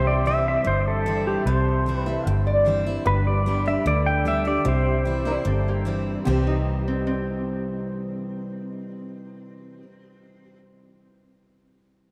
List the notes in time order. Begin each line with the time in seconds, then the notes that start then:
Already playing: C2 C3 E4 G4 C5 E5
0.07 D5
0.25 E3 G3 C4 E4 E5
0.48 E5
0.65 G1 G2 C5
0.88 A4
1.06 E3 G3 C4 E4
1.27 G4
1.45 C2 C3 C5
1.86 E3 G3 C4 E4
1.98 B4
2.06 C4 E4 E5
2.26 G1 G2 G5
2.47 D5
2.65 E3 G3 C4 E4 C5
2.86 C4 E4
3.05 G1 G2 D4 G4 B4
3.27 D5
3.46 G3 B3 D4 G4
3.66 D4 G4 E5
3.85 D2 D3 D5
4.06 G5
4.25 G3 B3 D4 G4 E5
4.45 D4 G4 D5
4.65 C2 C3 E4 G4 C5
5.05 E3 G3 C4 E4
5.25 C4 E4 C5
5.45 G1 G2 C4 A4
5.68 A#3 G4
5.85 E3 G3 C4 E4 G4
6.25 C2 C3 E3 G3 C4 G4
6.29 C5
6.47 D#4
6.88 C4
7.07 C4